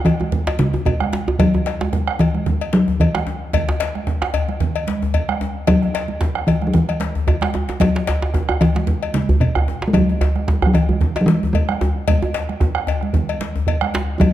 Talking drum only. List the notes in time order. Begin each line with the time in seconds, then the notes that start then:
0.05 E3
0.59 C#3
0.85 B2
1.39 F#3
2.19 E3
2.73 F#3
3.00 E3
5.68 F#3
6.47 E3
6.67 F#3
6.74 E3
7.80 F#3
8.61 E3
9.14 C#3
9.40 B2
9.88 G#3
9.93 F#3
10.67 F#3
10.74 E3
11.21 F#3
11.26 E3
11.53 G#3
14.20 F#3